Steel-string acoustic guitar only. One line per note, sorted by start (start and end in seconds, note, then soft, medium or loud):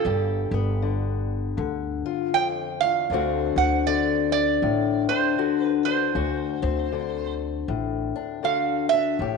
0.00 0.81 D3 medium
0.05 2.33 G2 medium
0.05 3.06 G4 medium
0.54 3.07 B3 medium
0.82 1.56 D3 medium
1.57 3.06 D3 medium
2.06 3.07 F4 medium
2.35 2.81 F2 medium
2.83 3.11 E2 medium
3.11 6.14 D2 medium
3.11 3.87 D3 medium
3.11 3.57 C4 medium
3.11 5.09 D4 medium
3.11 5.37 F#4 medium
3.58 6.11 C4 medium
3.87 5.37 D3 medium
4.63 5.38 A2 medium
5.10 5.86 D4 medium
5.38 6.90 D3 medium
5.38 6.11 F#4 medium
5.88 6.12 D4 medium
6.15 9.19 D2 medium
6.15 8.43 F#4 medium
6.62 9.15 C4 medium
6.92 8.42 D3 medium
7.69 8.43 A2 medium
8.16 8.90 D4 medium
8.43 9.18 D3 medium
8.43 9.16 F#4 medium
8.93 9.17 D4 medium
9.20 9.37 A2 medium
9.20 9.37 G4 medium